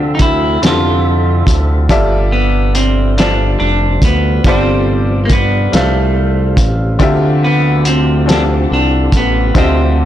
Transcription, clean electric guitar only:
0, 0, Header, 1, 2, 480
1, 0, Start_track
1, 0, Tempo, 851064
1, 1066, Time_signature, 6, 3, 24, 8
1, 5669, End_track
2, 0, Start_track
2, 0, Title_t, "Clean electric guitar"
2, 0, Program_c, 0, 27
2, 0, Note_on_c, 0, 62, 101
2, 81, Note_off_c, 0, 62, 0
2, 84, Note_on_c, 0, 63, 76
2, 115, Note_off_c, 0, 63, 0
2, 123, Note_on_c, 0, 64, 99
2, 338, Note_off_c, 0, 64, 0
2, 370, Note_on_c, 0, 65, 98
2, 876, Note_off_c, 0, 65, 0
2, 1311, Note_on_c, 0, 59, 87
2, 1550, Note_off_c, 0, 59, 0
2, 1552, Note_on_c, 0, 60, 93
2, 1772, Note_off_c, 0, 60, 0
2, 1797, Note_on_c, 0, 62, 102
2, 2015, Note_off_c, 0, 62, 0
2, 2029, Note_on_c, 0, 62, 99
2, 2275, Note_off_c, 0, 62, 0
2, 2282, Note_on_c, 0, 59, 90
2, 2498, Note_off_c, 0, 59, 0
2, 2520, Note_on_c, 0, 60, 105
2, 2931, Note_off_c, 0, 60, 0
2, 2963, Note_on_c, 0, 58, 69
2, 2994, Note_off_c, 0, 58, 0
2, 3003, Note_on_c, 0, 59, 90
2, 3242, Note_off_c, 0, 59, 0
2, 3251, Note_on_c, 0, 57, 80
2, 3756, Note_off_c, 0, 57, 0
2, 4198, Note_on_c, 0, 59, 99
2, 4435, Note_off_c, 0, 59, 0
2, 4438, Note_on_c, 0, 60, 96
2, 4679, Note_off_c, 0, 60, 0
2, 4688, Note_on_c, 0, 62, 104
2, 4750, Note_off_c, 0, 62, 0
2, 4926, Note_on_c, 0, 62, 100
2, 5163, Note_off_c, 0, 62, 0
2, 5171, Note_on_c, 0, 59, 96
2, 5402, Note_off_c, 0, 59, 0
2, 5404, Note_on_c, 0, 60, 100
2, 5669, Note_off_c, 0, 60, 0
2, 5669, End_track
0, 0, End_of_file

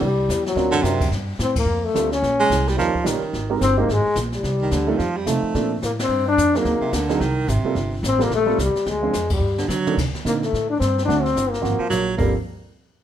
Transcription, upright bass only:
0, 0, Header, 1, 3, 480
1, 0, Start_track
1, 0, Key_signature, -2, "minor"
1, 0, Tempo, 276753
1, 14, Time_signature, 4, 2, 24, 8
1, 22610, End_track
2, 0, Start_track
2, 0, Title_t, "Upright bass"
2, 0, Program_c, 0, 32
2, 18, Note_on_c, 0, 36, 82
2, 481, Note_off_c, 0, 36, 0
2, 502, Note_on_c, 0, 40, 93
2, 951, Note_off_c, 0, 40, 0
2, 961, Note_on_c, 0, 38, 80
2, 1431, Note_off_c, 0, 38, 0
2, 1442, Note_on_c, 0, 42, 86
2, 1911, Note_off_c, 0, 42, 0
2, 1928, Note_on_c, 0, 43, 78
2, 2394, Note_off_c, 0, 43, 0
2, 2412, Note_on_c, 0, 45, 85
2, 2855, Note_off_c, 0, 45, 0
2, 2865, Note_on_c, 0, 41, 83
2, 3342, Note_off_c, 0, 41, 0
2, 3372, Note_on_c, 0, 38, 88
2, 3836, Note_off_c, 0, 38, 0
2, 3857, Note_on_c, 0, 34, 84
2, 4318, Note_off_c, 0, 34, 0
2, 4334, Note_on_c, 0, 36, 89
2, 4797, Note_off_c, 0, 36, 0
2, 4825, Note_on_c, 0, 39, 85
2, 5087, Note_off_c, 0, 39, 0
2, 5298, Note_on_c, 0, 34, 87
2, 5564, Note_off_c, 0, 34, 0
2, 5779, Note_on_c, 0, 32, 79
2, 6240, Note_off_c, 0, 32, 0
2, 6261, Note_on_c, 0, 31, 89
2, 6721, Note_off_c, 0, 31, 0
2, 6739, Note_on_c, 0, 32, 85
2, 7004, Note_off_c, 0, 32, 0
2, 7207, Note_on_c, 0, 34, 92
2, 7674, Note_off_c, 0, 34, 0
2, 7682, Note_on_c, 0, 36, 80
2, 8151, Note_off_c, 0, 36, 0
2, 8175, Note_on_c, 0, 38, 86
2, 8638, Note_off_c, 0, 38, 0
2, 8654, Note_on_c, 0, 41, 84
2, 9117, Note_off_c, 0, 41, 0
2, 9130, Note_on_c, 0, 48, 88
2, 9399, Note_off_c, 0, 48, 0
2, 9617, Note_on_c, 0, 46, 80
2, 10079, Note_off_c, 0, 46, 0
2, 10091, Note_on_c, 0, 45, 79
2, 10541, Note_off_c, 0, 45, 0
2, 10552, Note_on_c, 0, 43, 85
2, 11026, Note_off_c, 0, 43, 0
2, 11055, Note_on_c, 0, 41, 90
2, 11518, Note_off_c, 0, 41, 0
2, 11530, Note_on_c, 0, 39, 81
2, 11794, Note_off_c, 0, 39, 0
2, 12014, Note_on_c, 0, 38, 83
2, 12477, Note_off_c, 0, 38, 0
2, 12489, Note_on_c, 0, 36, 87
2, 12955, Note_off_c, 0, 36, 0
2, 12967, Note_on_c, 0, 32, 86
2, 13227, Note_off_c, 0, 32, 0
2, 13443, Note_on_c, 0, 31, 85
2, 13911, Note_off_c, 0, 31, 0
2, 13924, Note_on_c, 0, 33, 91
2, 14392, Note_off_c, 0, 33, 0
2, 14401, Note_on_c, 0, 34, 86
2, 14870, Note_off_c, 0, 34, 0
2, 14889, Note_on_c, 0, 36, 89
2, 15152, Note_off_c, 0, 36, 0
2, 15368, Note_on_c, 0, 38, 82
2, 15833, Note_off_c, 0, 38, 0
2, 15849, Note_on_c, 0, 41, 81
2, 16294, Note_off_c, 0, 41, 0
2, 16304, Note_on_c, 0, 43, 79
2, 16781, Note_off_c, 0, 43, 0
2, 16800, Note_on_c, 0, 50, 91
2, 17269, Note_off_c, 0, 50, 0
2, 17302, Note_on_c, 0, 48, 72
2, 17555, Note_off_c, 0, 48, 0
2, 17776, Note_on_c, 0, 46, 85
2, 18237, Note_off_c, 0, 46, 0
2, 18264, Note_on_c, 0, 45, 77
2, 18722, Note_off_c, 0, 45, 0
2, 18739, Note_on_c, 0, 43, 85
2, 19199, Note_off_c, 0, 43, 0
2, 19219, Note_on_c, 0, 38, 77
2, 19679, Note_off_c, 0, 38, 0
2, 19698, Note_on_c, 0, 31, 79
2, 20159, Note_off_c, 0, 31, 0
2, 20176, Note_on_c, 0, 32, 73
2, 20432, Note_off_c, 0, 32, 0
2, 20645, Note_on_c, 0, 34, 87
2, 21113, Note_off_c, 0, 34, 0
2, 21127, Note_on_c, 0, 31, 81
2, 21398, Note_off_c, 0, 31, 0
2, 22610, End_track
3, 0, Start_track
3, 0, Title_t, "Muted upright bass strokes"
3, 5115, Note_on_c, 9, 29, 42
3, 5288, Note_off_c, 9, 29, 0
3, 5576, Note_on_c, 9, 29, 34
3, 5749, Note_off_c, 9, 29, 0
3, 7022, Note_on_c, 9, 29, 39
3, 7195, Note_off_c, 9, 29, 0
3, 9412, Note_on_c, 9, 29, 35
3, 9586, Note_off_c, 9, 29, 0
3, 11804, Note_on_c, 9, 29, 42
3, 11977, Note_off_c, 9, 29, 0
3, 15162, Note_on_c, 9, 29, 36
3, 15336, Note_off_c, 9, 29, 0
3, 17566, Note_on_c, 9, 29, 39
3, 17739, Note_off_c, 9, 29, 0
3, 20442, Note_on_c, 9, 29, 37
3, 20616, Note_off_c, 9, 29, 0
3, 22610, End_track
0, 0, End_of_file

